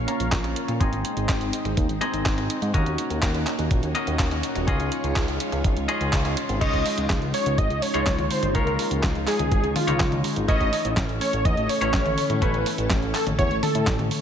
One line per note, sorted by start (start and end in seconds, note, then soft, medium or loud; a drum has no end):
0.00 0.79 A#3 medium
0.00 0.79 C#4 medium
0.00 0.79 F4 medium
0.00 0.79 C#5 medium
0.00 0.79 F5 medium
0.07 0.78 C#4 medium
0.07 0.78 F4 medium
0.07 0.78 A#4 medium
0.07 0.78 F5 loud
0.07 closed hi-hat medium
0.20 0.31 A#1 medium
0.20 closed hi-hat soft
0.32 0.43 A#1 loud
0.32 kick loud
0.32 snare loud
0.32 clap medium
0.32 closed hi-hat medium
0.44 0.55 A#1 medium
0.44 closed hi-hat soft
0.44 high tom medium
0.56 closed hi-hat loud
0.68 0.79 A#2 medium
0.68 closed hi-hat soft
0.68 high tom medium
0.80 0.91 G#1 loud
0.80 2.72 G#3 medium
0.80 1.99 C4 medium
0.80 2.72 C4 medium
0.80 1.99 D#4 medium
0.80 6.57 D#4 medium
0.80 1.99 G#4 medium
0.80 2.72 C5 medium
0.80 2.72 D#5 medium
0.80 1.99 D#5 medium
0.80 kick loud
0.80 closed hi-hat medium
0.92 1.03 G#1 medium
0.92 closed hi-hat soft
1.05 closed hi-hat loud
1.17 1.27 G#1 medium
1.17 closed hi-hat soft
1.29 1.40 G#1 loud
1.29 kick loud
1.29 snare loud
1.29 clap medium
1.29 closed hi-hat medium
1.41 1.52 G#1 medium
1.41 closed hi-hat soft
1.53 closed hi-hat medium
1.65 1.76 G#1 medium
1.65 closed hi-hat soft
1.65 high tom medium
1.77 1.88 D#2 loud
1.77 kick loud
1.77 closed hi-hat medium
1.89 2.00 G#1 medium
1.89 closed hi-hat soft
2.01 2.71 C4 medium
2.01 2.71 D#4 medium
2.01 2.71 G#4 medium
2.01 2.71 D#5 loud
2.01 closed hi-hat medium
2.01 high tom medium
2.13 2.24 G#1 medium
2.13 closed hi-hat soft
2.26 2.36 G#1 loud
2.26 kick loud
2.26 snare loud
2.26 clap medium
2.26 closed hi-hat medium
2.38 2.48 G#1 medium
2.38 closed hi-hat soft
2.38 high tom medium
2.50 closed hi-hat loud
2.62 2.73 G#2 medium
2.62 closed hi-hat soft
2.74 2.85 D#2 loud
2.74 4.66 A#3 medium
2.74 3.93 C#4 medium
2.74 6.57 C#4 medium
2.74 4.66 F#4 medium
2.74 3.93 F#4 medium
2.74 3.93 A#4 medium
2.74 6.57 C#5 medium
2.74 3.93 D#5 medium
2.74 kick loud
2.74 closed hi-hat medium
2.86 2.97 D#2 medium
2.86 closed hi-hat soft
2.98 closed hi-hat medium
3.10 3.21 D#2 medium
3.10 closed hi-hat soft
3.22 3.33 D#2 loud
3.22 kick loud
3.22 snare loud
3.22 clap loud
3.22 closed hi-hat medium
3.35 3.45 D#2 medium
3.35 closed hi-hat soft
3.47 clap medium
3.47 closed hi-hat medium
3.59 3.69 D#2 medium
3.59 closed hi-hat soft
3.71 3.82 A#1 loud
3.71 kick loud
3.71 closed hi-hat medium
3.83 3.94 D#2 medium
3.83 closed hi-hat soft
3.95 4.65 C#4 medium
3.95 4.65 F#4 medium
3.95 4.65 A#4 medium
3.95 4.65 D#5 loud
3.95 closed hi-hat medium
4.07 4.18 D#2 medium
4.07 closed hi-hat soft
4.19 4.30 D#2 loud
4.19 kick loud
4.19 snare loud
4.19 clap medium
4.19 closed hi-hat medium
4.31 4.42 D#2 medium
4.31 closed hi-hat soft
4.31 high tom medium
4.43 closed hi-hat medium
4.55 4.66 D#1 medium
4.55 closed hi-hat soft
4.55 high tom medium
4.67 4.78 C#2 medium
4.67 6.59 G#3 medium
4.67 5.86 C#4 medium
4.67 6.59 F4 medium
4.67 5.86 F4 medium
4.67 5.86 G#4 medium
4.67 5.86 D#5 medium
4.67 kick loud
4.67 closed hi-hat medium
4.80 4.90 C#2 medium
4.80 closed hi-hat soft
4.92 closed hi-hat medium
5.04 5.15 C#2 medium
5.04 closed hi-hat soft
5.16 5.27 C#2 loud
5.16 kick loud
5.16 snare loud
5.16 clap medium
5.16 closed hi-hat medium
5.28 5.39 C#2 medium
5.28 closed hi-hat soft
5.40 closed hi-hat loud
5.52 5.63 C#2 medium
5.52 closed hi-hat soft
5.52 high tom medium
5.64 5.75 G#1 loud
5.64 kick loud
5.64 closed hi-hat medium
5.77 5.87 C#2 medium
5.77 closed hi-hat soft
5.88 6.58 C#4 medium
5.88 6.58 F4 medium
5.88 6.58 G#4 medium
5.88 6.58 D#5 loud
5.88 closed hi-hat medium
5.88 high tom medium
6.01 6.11 C#2 medium
6.01 closed hi-hat soft
6.13 6.24 C#2 loud
6.13 kick loud
6.13 snare loud
6.13 clap medium
6.13 closed hi-hat medium
6.25 6.36 C#2 medium
6.25 closed hi-hat soft
6.25 high tom medium
6.37 closed hi-hat medium
6.49 6.60 G#1 medium
6.49 closed hi-hat soft
6.61 6.72 C#2 loud
6.61 7.80 G#3 medium
6.61 10.45 G#3 medium
6.61 14.21 C#4 medium
6.61 7.80 D#4 medium
6.61 10.45 D#4 medium
6.61 10.45 F4 medium
6.61 7.80 F4 medium
6.61 14.21 C#5 medium
6.61 7.80 C#5 medium
6.61 7.06 D#5 loud
6.61 kick loud
6.61 closed hi-hat medium
6.61 crash loud
6.73 6.84 C#2 medium
6.73 kick medium
6.73 closed hi-hat soft
6.86 open hi-hat loud
6.98 7.08 C#2 medium
6.98 closed hi-hat medium
7.10 7.20 C#2 loud
7.10 kick loud
7.10 snare loud
7.10 clap loud
7.10 closed hi-hat medium
7.22 7.32 C#2 medium
7.22 closed hi-hat soft
7.34 7.60 C#5 loud
7.34 open hi-hat loud
7.46 7.57 C#2 medium
7.46 closed hi-hat medium
7.58 7.69 G#1 loud
7.58 7.83 D#5 loud
7.58 kick loud
7.58 closed hi-hat medium
7.70 7.81 C#2 medium
7.70 closed hi-hat soft
7.82 8.32 C#5 loud
7.82 open hi-hat loud
7.94 8.05 C#2 medium
7.94 8.52 G#3 medium
7.94 8.52 D#4 medium
7.94 8.52 F4 medium
7.94 8.52 C#5 loud
7.94 closed hi-hat medium
8.06 8.17 C#2 loud
8.06 kick loud
8.06 snare loud
8.06 clap medium
8.06 closed hi-hat medium
8.19 8.29 C#2 medium
8.19 closed hi-hat soft
8.19 high tom medium
8.31 8.54 C5 loud
8.31 open hi-hat loud
8.43 8.53 G#1 medium
8.43 closed hi-hat medium
8.43 high tom medium
8.54 8.65 C#2 loud
8.54 9.73 G#3 medium
8.54 9.73 D#4 medium
8.54 9.73 F4 medium
8.54 9.00 A#4 medium
8.54 9.73 C#5 medium
8.54 kick loud
8.54 closed hi-hat medium
8.67 8.78 C#2 medium
8.67 closed hi-hat soft
8.79 open hi-hat loud
8.91 9.02 C#2 medium
8.91 closed hi-hat medium
9.03 9.14 C#2 loud
9.03 kick loud
9.03 snare loud
9.03 clap loud
9.03 closed hi-hat medium
9.15 9.26 C#2 medium
9.15 closed hi-hat soft
9.27 9.50 G#4 loud
9.27 clap medium
9.27 open hi-hat loud
9.39 9.50 C#2 medium
9.39 closed hi-hat medium
9.39 high tom medium
9.52 9.62 G#1 loud
9.52 9.74 G#4 loud
9.52 kick loud
9.52 closed hi-hat medium
9.64 9.74 C#2 medium
9.64 closed hi-hat soft
9.76 10.21 F4 medium
9.76 open hi-hat loud
9.76 high tom medium
9.87 9.99 C#2 medium
9.87 10.45 G#3 medium
9.87 10.45 D#4 medium
9.87 10.45 F4 medium
9.87 10.45 C#5 loud
9.87 closed hi-hat medium
10.00 10.11 C#2 loud
10.00 kick loud
10.00 snare loud
10.00 clap medium
10.00 closed hi-hat medium
10.12 10.23 C#2 medium
10.12 closed hi-hat soft
10.12 high tom medium
10.24 open hi-hat loud
10.36 10.47 G#1 medium
10.36 closed hi-hat medium
10.48 10.59 A1 loud
10.48 14.21 E3 medium
10.48 11.67 A3 medium
10.48 14.21 A3 medium
10.48 11.67 C#4 medium
10.48 11.67 E4 medium
10.48 14.21 A4 medium
10.48 11.67 C#5 medium
10.48 10.93 D#5 loud
10.48 kick loud
10.48 closed hi-hat medium
10.60 10.71 A1 medium
10.60 kick medium
10.60 closed hi-hat soft
10.73 open hi-hat loud
10.85 10.95 A1 medium
10.85 closed hi-hat medium
10.97 11.07 A1 loud
10.97 kick loud
10.97 snare loud
10.97 clap loud
10.97 closed hi-hat medium
11.09 11.20 A1 medium
11.09 closed hi-hat soft
11.21 11.47 C#5 loud
11.21 open hi-hat loud
11.33 11.44 A1 medium
11.33 closed hi-hat soft
11.45 11.56 E2 loud
11.45 11.71 D#5 loud
11.45 kick loud
11.45 closed hi-hat medium
11.57 11.68 A1 medium
11.57 closed hi-hat soft
11.69 12.44 C#5 loud
11.69 open hi-hat loud
11.81 11.92 A1 medium
11.81 12.39 A3 medium
11.81 12.39 C#4 medium
11.81 12.39 E4 medium
11.81 12.39 C#5 loud
11.81 closed hi-hat medium
11.94 12.04 A1 loud
11.94 kick loud
11.94 snare loud
11.94 clap medium
11.94 closed hi-hat medium
12.06 12.16 A1 medium
12.06 closed hi-hat soft
12.06 high tom medium
12.18 open hi-hat loud
12.30 12.40 A2 medium
12.30 closed hi-hat medium
12.30 high tom medium
12.41 12.53 A1 loud
12.41 13.60 A3 medium
12.41 13.60 C#4 medium
12.41 13.60 E4 medium
12.41 12.90 B4 medium
12.41 13.60 C#5 medium
12.41 kick loud
12.41 closed hi-hat medium
12.54 12.65 A1 medium
12.54 closed hi-hat soft
12.66 open hi-hat loud
12.78 12.89 A1 medium
12.78 closed hi-hat medium
12.90 13.01 A1 loud
12.90 kick loud
12.90 snare loud
12.90 clap medium
12.90 closed hi-hat medium
13.02 13.13 A1 medium
13.02 closed hi-hat soft
13.14 13.25 A4 medium
13.14 clap medium
13.14 open hi-hat loud
13.27 13.37 A1 medium
13.27 closed hi-hat soft
13.27 high tom medium
13.39 13.49 E2 loud
13.39 13.61 C#5 loud
13.39 kick loud
13.39 closed hi-hat medium
13.51 13.61 A1 medium
13.51 closed hi-hat soft
13.63 14.08 A4 medium
13.63 open hi-hat loud
13.63 high tom medium
13.75 13.86 A2 medium
13.75 closed hi-hat medium
13.87 13.98 A1 loud
13.87 kick loud
13.87 snare loud
13.87 clap medium
13.87 closed hi-hat soft
13.99 14.10 A1 medium
13.99 closed hi-hat soft
13.99 high tom medium
14.11 open hi-hat loud